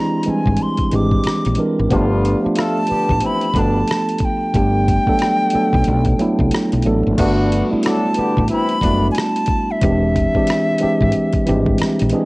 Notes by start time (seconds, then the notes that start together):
Already playing: E3 G#3 C4 D4 E4 G4 A#5
0.23 E3 G#3 C4, closed hi-hat
0.27 G3 D4 G#5, muted fretless electric bass stroke
0.46 G#1, kick
0.57 closed hi-hat
0.62 C6
0.77 kick, closed hi-hat
0.92 G#1 E3 G#3 C4 D4 G4 D6, closed hi-hat
1.11 kick
1.24 muted fretless electric bass stroke, cross-stick, closed hi-hat
1.45 A#1, closed hi-hat
1.55 E3 G#3 C4 D4, closed hi-hat
1.60 A#4
1.79 G#1
1.90 G1 D3 F3 A3 B3 D4 F4 G4, kick, closed hi-hat
2.25 closed hi-hat
2.43 F3 A3 B3 D4 F4, muted fretless electric bass stroke
2.56 A3 F4 A4, cross-stick, closed hi-hat
2.60 A5
2.87 D3 B3 G4, closed hi-hat
2.91 muted fretless electric bass stroke
3.09 A1, kick
3.20 E3 C4 E4, closed hi-hat
3.26 B5
3.41 closed hi-hat
3.54 G1 B2 F3 G3 A3 B3 D4 A4, kick, closed hi-hat
3.59 A5
3.87 cross-stick, closed hi-hat
4.09 closed hi-hat
4.18 kick, closed hi-hat
4.24 G5
4.54 G1 G3 A3 B3 D4 G4, kick, closed hi-hat
4.88 kick, closed hi-hat
5.07 F#3 A3 B3 D4 A4, muted fretless electric bass stroke, kick
5.19 cross-stick, closed hi-hat
5.50 F#3 A3 B3, closed hi-hat
5.55 D4 A4, muted fretless electric bass stroke
5.73 B1, kick
5.84 B1, closed hi-hat
6.05 kick, closed hi-hat
6.19 F#3 A3 B3 D4 E4, muted fretless electric bass stroke, closed hi-hat
6.39 C2, kick
6.51 cross-stick, closed hi-hat
6.72 B1, closed hi-hat
6.82 A1 F#3 A3 B3, closed hi-hat
6.87 D4 A4
7.07 G#1
7.18 G1 D3 G3 A3 B3 D4 F#4, kick, closed hi-hat, crash
7.52 closed hi-hat
7.71 G3 A3 B3 D4 E4, muted fretless electric bass stroke
7.83 F#3 D4 A4, cross-stick, closed hi-hat
7.87 A5
8.14 D3 B3 G4, muted fretless electric bass stroke, closed hi-hat
8.37 A1, kick
8.48 E3 C4 E4, closed hi-hat
8.52 B5
8.69 closed hi-hat
8.81 F#1 B2 G3 A3 B3 D4 F#4, kick, closed hi-hat
9.12 G#5, closed hi-hat
9.18 A5, cross-stick
9.36 closed hi-hat
9.46 kick, closed hi-hat
9.71 E5
9.82 E1 E3 G#3 C4 D4 G4, kick, closed hi-hat
10.16 kick, closed hi-hat
10.34 E3 G#3 C4 D4 G4, muted fretless electric bass stroke, kick
10.47 cross-stick, closed hi-hat
10.78 E3 G#3 C4 D4, closed hi-hat
10.82 G4, muted fretless electric bass stroke
11.01 G#1, kick
11.12 closed hi-hat
11.33 kick, closed hi-hat
11.46 G#1 E3 G3 C4 D4 G4, closed hi-hat
11.53 G#3
11.66 kick
11.78 muted fretless electric bass stroke, cross-stick, closed hi-hat
11.99 A#1, closed hi-hat
12.09 E3 G#3 C4, closed hi-hat
12.14 D4 G#4